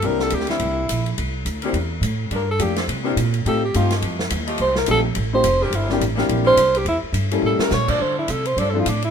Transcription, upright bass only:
X:1
M:4/4
L:1/8
Q:"Swing" 1/4=211
K:Cmix
V:1 name="Upright bass" clef=bass
C,,2 D,,2 C,,2 B,,,2 | C,,2 D,,2 E,,2 A,,2 | G,,2 F,,2 C,2 B,,2 | A,,2 G,,2 F,,2 _E,,2 |
C,,2 B,,,2 A,,,2 F,,,2 | G,,,2 A,,,2 B,,,2 C,,2 | E,, z G,,2 A,, z B,,2 | D,2 C,2 G,,2 A,,2 |]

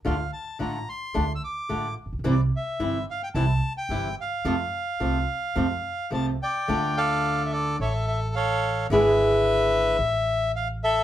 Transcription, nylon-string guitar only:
X:1
M:4/4
L:1/8
Q:1/4=109
K:F
V:1 name="Nylon-string guitar"
[D,A,DF] z [D,A,DF] z [D,A,DF] z [D,A,DF] z | [C,E,G,CE] z [C,E,G,CE] z [C,E,G,CE] z [C,E,G,CE] z | [C,F,A,CF] z [C,F,A,CF] z [C,F,A,CF] z [C,F,A,CF] z | [K:Aphr] [D,A,DF]4 z4 |
[D,^G,=B,E^G]4 z4 |]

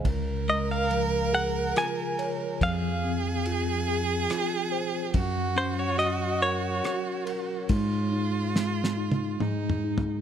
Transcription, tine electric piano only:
X:1
M:3/4
L:1/8
Q:1/4=70
K:Db
V:1 name="Tine electric piano"
D, A, F, A F d | F, C F A F c | G, D G B G B | A, E A, E A, E |]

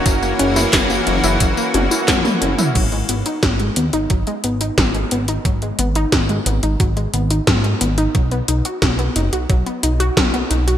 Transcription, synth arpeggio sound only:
X:1
M:4/4
L:1/16
Q:1/4=89
K:G#m
V:1 name="Synth arpeggio sound"
F, A, C E F, A, C E F, A, C E F, A, C E | F, G, B, D F, G, B, D F, G, B, D F, G, B, D | F, G, B, D F, G, B, D F, G, B, D F, G, B, D | F, B, D F F, B, D F F, B, D F F, B, D F |]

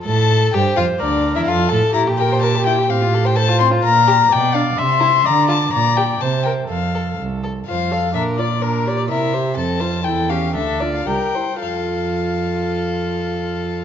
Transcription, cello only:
X:1
M:2/4
L:1/16
Q:1/4=126
K:F
V:1 name="Cello" clef=bass
A,,4 G,,2 F,,2 | D,,3 E,, F,,2 A,,2 | B,,8 | A,,8 |
B,,4 =B,,4 | C,4 D,4 | B,,4 C,4 | F,,4 C,,4 |
F,,4 B,,4- | B,,4 C,4 | F,,4 E,,4 | D,,4 C,,2 z2 |
F,,8- | F,,8 |]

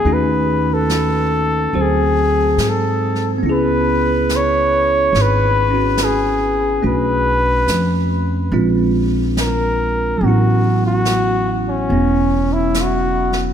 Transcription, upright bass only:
X:1
M:4/4
L:1/8
Q:"Swing" 1/4=71
K:A
V:1 name="Upright bass" clef=bass
^D,,4 =D,,2 G,,2 | C,,4 G,,,4 | B,,,2 =F,,2 _B,,,4 | A,,,4 E,,,4 |]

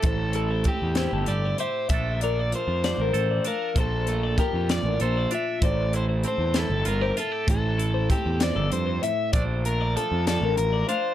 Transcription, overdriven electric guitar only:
X:1
M:6/8
L:1/8
Q:3/8=65
K:Aphr
V:1 name="Overdriven electric guitar"
A2 G2 d c | e d c3 B | A2 G d c e | d c c A B A |
A2 G d c e | d B A A B c |]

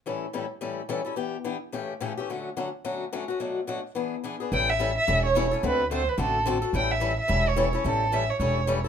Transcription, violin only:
X:1
M:4/4
L:1/8
Q:"Swing" 1/4=216
K:Amix
V:1 name="Violin"
z8 | z8 | z8 | z8 |
g e2 e2 c2 z | B2 =c B A3 z | g e2 e2 c2 z | A2 e c c3 z |]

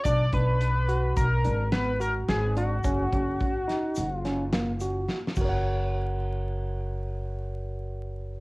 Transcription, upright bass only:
X:1
M:5/4
L:1/8
Q:1/4=107
K:F#
V:1 name="Upright bass" clef=bass
B,,, B,,,3 B,,, G,,,3 G,,,2 | F,,, F,,, z2 F,,,4 z F,,,- | F,,,8- F,,,2 |]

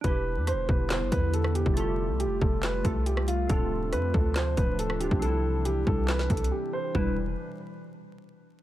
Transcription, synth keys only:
X:1
M:4/4
L:1/8
Q:1/4=139
K:Ephr
V:1 name="Synth keys"
[DEG]8 | [A,FG]4- [A,FG] [A,FA]3 | [CDF]6- [CDF] [CDF] | [CDE]8 |
[G,DE] z6 z |]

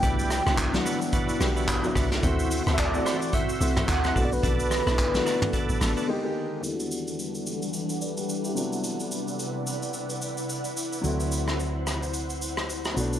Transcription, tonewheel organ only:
X:1
M:4/4
L:1/16
Q:"Swing 16ths" 1/4=109
K:Em
V:1 name="Tonewheel organ"
[EGBd]3 [EFBd] z2 [EFBd] z [EFBd]3 [EFBd] z2 [EFBd] z | [Fce]3 [Fce] z2 [Fce] z [Fce]3 [Fce] z2 [ABd] z | [ABd]3 [ABd] z2 [ABd] z [ABd]3 [ABd] z4 | z16 |
z16 | z16 |]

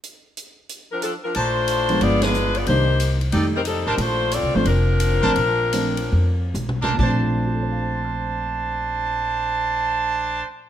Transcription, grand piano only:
X:1
M:4/4
L:1/8
Q:"Swing" 1/4=177
K:Bb
V:1 name="Grand piano"
z8 | z8 | z8 | z8 |
z8 | z2 [FAcfac'f']6- | [FAcfac'f']8 |]
V:2 name="Grand piano"
z8 | z3 [F,_A,_CD]3 z2 | [E,G,B,D] z3 [E,G,A,E] z3 | z3 [F,A,CD] z3 [F,A,CD] |
z2 [F,A,CD] z4 z | [B,,F,A,CD]8- | [B,,F,A,CD]8 |]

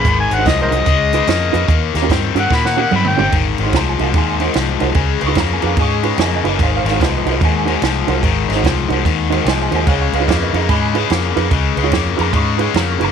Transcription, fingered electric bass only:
X:1
M:4/4
L:1/8
Q:"Swing" 1/4=146
K:Abmix
V:1 name="Fingered electric bass" clef=bass
A,,, A,,, C,, C,, D,,2 F,, F,, | E,, E,, =G,, G,, B,,2 G,, =G,,, | A,,, A,,, C,, C,, E,,2 C,, C,, | D,, D,, F,, F,, A,,2 F,, G,,, |
A,,, A,,, C,, C,, E,,2 C,, C,, | A,,, A,,, C,, C,, E,,2 C,, E,, | D,, D,, F,, F,, A,,2 F,, F,, | D,, D,, F,, F,, A,,2 F,, G,,, |]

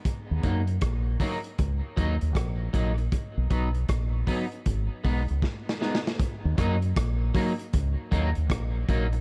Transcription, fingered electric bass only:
X:1
M:4/4
L:1/16
Q:"Swing 16ths" 1/4=78
K:Ebm
V:1 name="Fingered electric bass" clef=bass
z E,, G,,2 B,,,2 z2 D,, z E,, E,, B,,,2 B,,,2 | z =B,,, B,,,2 _B,,,2 z2 A,,, z C,, D,, z4 | z E,, G,,2 B,,,2 z2 D,, z E,, E,, B,,,2 B,,,2 |]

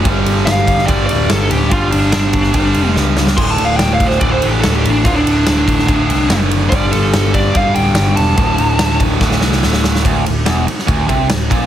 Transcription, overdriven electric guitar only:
X:1
M:4/4
L:1/8
Q:1/4=144
K:Dm
V:1 name="Overdriven electric guitar" clef=bass
[G,,D,G,]4 [G,,D,G,]4 | [G,,D,G,]4 [G,,D,G,]4 | [D,,A,,D,]4 [D,,A,,D,]4 | [D,,A,,D,]4 [D,,A,,D,]4 |
[G,,D,G,]4 [G,,D,G,]4 | [D,,A,,D,]4 [D,,A,,D,]4 | D,, D,, E,, z D,, C, D,, B,, |]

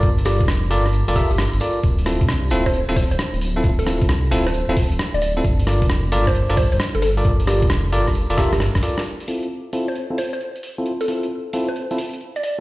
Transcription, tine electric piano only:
X:1
M:4/4
L:1/16
Q:"Swing 16ths" 1/4=133
K:Cmix
V:1 name="Tine electric piano"
z2 [FABd] z3 [FABd] z2 [FABd] [FABe] z3 [FABd] z | z2 [CEFA] z3 [CEFA] z2 [CEFA] z4 z [CEFA] | z2 [CEFA] z3 [CEFA] z2 [CEFA] z4 z [CEFA] | z2 [FABd] z3 [FABd] z2 [FABd] z4 z [FABd] |
z2 [FABd] z3 [FABd] z2 [FABd] [FABe] z3 [FABd] z | z2 [CEFA] z3 [CEFA] z2 [CEFA] z4 z [CEFA] | z2 [CEFA] z3 [CEFA] z2 [CEFA] z6 |]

